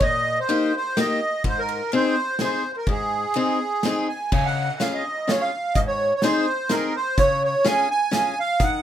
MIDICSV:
0, 0, Header, 1, 4, 480
1, 0, Start_track
1, 0, Key_signature, -4, "major"
1, 0, Tempo, 479616
1, 14, Time_signature, 3, 2, 24, 8
1, 4333, Key_signature, -5, "major"
1, 5294, Tempo, 472813
1, 8878, End_track
2, 0, Start_track
2, 0, Title_t, "Accordion"
2, 0, Program_c, 0, 21
2, 19, Note_on_c, 0, 75, 100
2, 391, Note_off_c, 0, 75, 0
2, 401, Note_on_c, 0, 72, 85
2, 749, Note_off_c, 0, 72, 0
2, 764, Note_on_c, 0, 72, 94
2, 992, Note_off_c, 0, 72, 0
2, 996, Note_on_c, 0, 75, 89
2, 1429, Note_off_c, 0, 75, 0
2, 1492, Note_on_c, 0, 72, 99
2, 1591, Note_on_c, 0, 70, 83
2, 1596, Note_off_c, 0, 72, 0
2, 1912, Note_off_c, 0, 70, 0
2, 1954, Note_on_c, 0, 72, 94
2, 2423, Note_off_c, 0, 72, 0
2, 2438, Note_on_c, 0, 72, 86
2, 2717, Note_off_c, 0, 72, 0
2, 2732, Note_on_c, 0, 72, 59
2, 2761, Note_off_c, 0, 72, 0
2, 2776, Note_on_c, 0, 70, 75
2, 2879, Note_off_c, 0, 70, 0
2, 2906, Note_on_c, 0, 68, 82
2, 4070, Note_off_c, 0, 68, 0
2, 4089, Note_on_c, 0, 80, 74
2, 4313, Note_off_c, 0, 80, 0
2, 4328, Note_on_c, 0, 80, 76
2, 4455, Note_on_c, 0, 78, 88
2, 4457, Note_off_c, 0, 80, 0
2, 4807, Note_on_c, 0, 77, 80
2, 4824, Note_off_c, 0, 78, 0
2, 4937, Note_off_c, 0, 77, 0
2, 4942, Note_on_c, 0, 75, 79
2, 5304, Note_on_c, 0, 73, 70
2, 5305, Note_off_c, 0, 75, 0
2, 5416, Note_on_c, 0, 77, 73
2, 5424, Note_off_c, 0, 73, 0
2, 5761, Note_on_c, 0, 75, 100
2, 5782, Note_off_c, 0, 77, 0
2, 5818, Note_off_c, 0, 75, 0
2, 5888, Note_on_c, 0, 73, 80
2, 6154, Note_off_c, 0, 73, 0
2, 6169, Note_on_c, 0, 73, 64
2, 6243, Note_off_c, 0, 73, 0
2, 6247, Note_on_c, 0, 72, 85
2, 6730, Note_on_c, 0, 70, 82
2, 6743, Note_off_c, 0, 72, 0
2, 6983, Note_off_c, 0, 70, 0
2, 6991, Note_on_c, 0, 72, 93
2, 7220, Note_on_c, 0, 73, 101
2, 7225, Note_off_c, 0, 72, 0
2, 7465, Note_off_c, 0, 73, 0
2, 7480, Note_on_c, 0, 73, 85
2, 7685, Note_off_c, 0, 73, 0
2, 7700, Note_on_c, 0, 80, 102
2, 7935, Note_off_c, 0, 80, 0
2, 7951, Note_on_c, 0, 80, 98
2, 8438, Note_off_c, 0, 80, 0
2, 8450, Note_on_c, 0, 77, 108
2, 8675, Note_off_c, 0, 77, 0
2, 8687, Note_on_c, 0, 78, 95
2, 8878, Note_off_c, 0, 78, 0
2, 8878, End_track
3, 0, Start_track
3, 0, Title_t, "Steel-string acoustic guitar"
3, 0, Program_c, 1, 25
3, 20, Note_on_c, 1, 46, 67
3, 377, Note_off_c, 1, 46, 0
3, 488, Note_on_c, 1, 58, 71
3, 491, Note_on_c, 1, 63, 62
3, 499, Note_on_c, 1, 67, 73
3, 712, Note_off_c, 1, 58, 0
3, 714, Note_off_c, 1, 63, 0
3, 716, Note_off_c, 1, 67, 0
3, 971, Note_on_c, 1, 58, 66
3, 976, Note_on_c, 1, 63, 52
3, 980, Note_on_c, 1, 67, 62
3, 1192, Note_off_c, 1, 58, 0
3, 1192, Note_off_c, 1, 63, 0
3, 1196, Note_off_c, 1, 67, 0
3, 1449, Note_on_c, 1, 44, 66
3, 1806, Note_off_c, 1, 44, 0
3, 1932, Note_on_c, 1, 60, 74
3, 1935, Note_on_c, 1, 63, 51
3, 1941, Note_on_c, 1, 68, 67
3, 2147, Note_off_c, 1, 63, 0
3, 2149, Note_off_c, 1, 60, 0
3, 2152, Note_off_c, 1, 68, 0
3, 2409, Note_on_c, 1, 60, 61
3, 2416, Note_on_c, 1, 68, 64
3, 2418, Note_on_c, 1, 63, 44
3, 2625, Note_off_c, 1, 60, 0
3, 2627, Note_off_c, 1, 63, 0
3, 2627, Note_off_c, 1, 68, 0
3, 2890, Note_on_c, 1, 44, 68
3, 3244, Note_off_c, 1, 44, 0
3, 3359, Note_on_c, 1, 63, 58
3, 3365, Note_on_c, 1, 60, 66
3, 3366, Note_on_c, 1, 68, 57
3, 3581, Note_off_c, 1, 63, 0
3, 3583, Note_off_c, 1, 68, 0
3, 3584, Note_off_c, 1, 60, 0
3, 3853, Note_on_c, 1, 60, 55
3, 3857, Note_on_c, 1, 63, 67
3, 3866, Note_on_c, 1, 68, 55
3, 4075, Note_off_c, 1, 60, 0
3, 4078, Note_off_c, 1, 63, 0
3, 4080, Note_off_c, 1, 68, 0
3, 4322, Note_on_c, 1, 49, 69
3, 4687, Note_off_c, 1, 49, 0
3, 4801, Note_on_c, 1, 61, 59
3, 4811, Note_on_c, 1, 65, 64
3, 4816, Note_on_c, 1, 68, 77
3, 5028, Note_off_c, 1, 61, 0
3, 5033, Note_off_c, 1, 65, 0
3, 5036, Note_off_c, 1, 68, 0
3, 5279, Note_on_c, 1, 61, 60
3, 5282, Note_on_c, 1, 65, 57
3, 5289, Note_on_c, 1, 68, 61
3, 5507, Note_off_c, 1, 61, 0
3, 5507, Note_off_c, 1, 65, 0
3, 5507, Note_off_c, 1, 68, 0
3, 5770, Note_on_c, 1, 44, 64
3, 6128, Note_off_c, 1, 44, 0
3, 6253, Note_on_c, 1, 63, 62
3, 6258, Note_on_c, 1, 60, 65
3, 6263, Note_on_c, 1, 68, 76
3, 6472, Note_off_c, 1, 63, 0
3, 6474, Note_off_c, 1, 60, 0
3, 6477, Note_off_c, 1, 68, 0
3, 6719, Note_on_c, 1, 60, 65
3, 6727, Note_on_c, 1, 63, 49
3, 6732, Note_on_c, 1, 68, 59
3, 6946, Note_off_c, 1, 60, 0
3, 6950, Note_off_c, 1, 68, 0
3, 6951, Note_off_c, 1, 63, 0
3, 7210, Note_on_c, 1, 49, 69
3, 7568, Note_off_c, 1, 49, 0
3, 7685, Note_on_c, 1, 61, 75
3, 7691, Note_on_c, 1, 65, 54
3, 7694, Note_on_c, 1, 68, 73
3, 7907, Note_off_c, 1, 61, 0
3, 7908, Note_off_c, 1, 65, 0
3, 7911, Note_off_c, 1, 68, 0
3, 8160, Note_on_c, 1, 61, 60
3, 8164, Note_on_c, 1, 65, 55
3, 8170, Note_on_c, 1, 68, 55
3, 8386, Note_off_c, 1, 61, 0
3, 8388, Note_off_c, 1, 65, 0
3, 8390, Note_off_c, 1, 68, 0
3, 8651, Note_on_c, 1, 51, 69
3, 8878, Note_off_c, 1, 51, 0
3, 8878, End_track
4, 0, Start_track
4, 0, Title_t, "Drums"
4, 3, Note_on_c, 9, 51, 42
4, 7, Note_on_c, 9, 36, 70
4, 103, Note_off_c, 9, 51, 0
4, 107, Note_off_c, 9, 36, 0
4, 494, Note_on_c, 9, 51, 43
4, 594, Note_off_c, 9, 51, 0
4, 969, Note_on_c, 9, 38, 55
4, 969, Note_on_c, 9, 51, 38
4, 1069, Note_off_c, 9, 38, 0
4, 1069, Note_off_c, 9, 51, 0
4, 1442, Note_on_c, 9, 51, 45
4, 1443, Note_on_c, 9, 36, 63
4, 1542, Note_off_c, 9, 51, 0
4, 1543, Note_off_c, 9, 36, 0
4, 1687, Note_on_c, 9, 51, 36
4, 1787, Note_off_c, 9, 51, 0
4, 1920, Note_on_c, 9, 51, 36
4, 2020, Note_off_c, 9, 51, 0
4, 2390, Note_on_c, 9, 38, 50
4, 2390, Note_on_c, 9, 51, 31
4, 2490, Note_off_c, 9, 38, 0
4, 2490, Note_off_c, 9, 51, 0
4, 2869, Note_on_c, 9, 51, 36
4, 2871, Note_on_c, 9, 36, 74
4, 2969, Note_off_c, 9, 51, 0
4, 2971, Note_off_c, 9, 36, 0
4, 3341, Note_on_c, 9, 51, 41
4, 3441, Note_off_c, 9, 51, 0
4, 3833, Note_on_c, 9, 38, 53
4, 3833, Note_on_c, 9, 51, 42
4, 3934, Note_off_c, 9, 38, 0
4, 3934, Note_off_c, 9, 51, 0
4, 4324, Note_on_c, 9, 49, 68
4, 4325, Note_on_c, 9, 36, 79
4, 4424, Note_off_c, 9, 49, 0
4, 4425, Note_off_c, 9, 36, 0
4, 4807, Note_on_c, 9, 38, 55
4, 4807, Note_on_c, 9, 42, 36
4, 4907, Note_off_c, 9, 38, 0
4, 4907, Note_off_c, 9, 42, 0
4, 5293, Note_on_c, 9, 38, 63
4, 5293, Note_on_c, 9, 42, 39
4, 5395, Note_off_c, 9, 38, 0
4, 5395, Note_off_c, 9, 42, 0
4, 5764, Note_on_c, 9, 42, 39
4, 5765, Note_on_c, 9, 36, 74
4, 5865, Note_off_c, 9, 42, 0
4, 5867, Note_off_c, 9, 36, 0
4, 6238, Note_on_c, 9, 38, 57
4, 6238, Note_on_c, 9, 42, 34
4, 6339, Note_off_c, 9, 38, 0
4, 6339, Note_off_c, 9, 42, 0
4, 6723, Note_on_c, 9, 38, 51
4, 6723, Note_on_c, 9, 42, 39
4, 6825, Note_off_c, 9, 38, 0
4, 6825, Note_off_c, 9, 42, 0
4, 7210, Note_on_c, 9, 36, 80
4, 7212, Note_on_c, 9, 42, 45
4, 7312, Note_off_c, 9, 36, 0
4, 7313, Note_off_c, 9, 42, 0
4, 7694, Note_on_c, 9, 38, 59
4, 7694, Note_on_c, 9, 42, 41
4, 7796, Note_off_c, 9, 38, 0
4, 7796, Note_off_c, 9, 42, 0
4, 8175, Note_on_c, 9, 38, 58
4, 8175, Note_on_c, 9, 42, 45
4, 8276, Note_off_c, 9, 38, 0
4, 8276, Note_off_c, 9, 42, 0
4, 8654, Note_on_c, 9, 36, 74
4, 8655, Note_on_c, 9, 42, 43
4, 8756, Note_off_c, 9, 36, 0
4, 8757, Note_off_c, 9, 42, 0
4, 8878, End_track
0, 0, End_of_file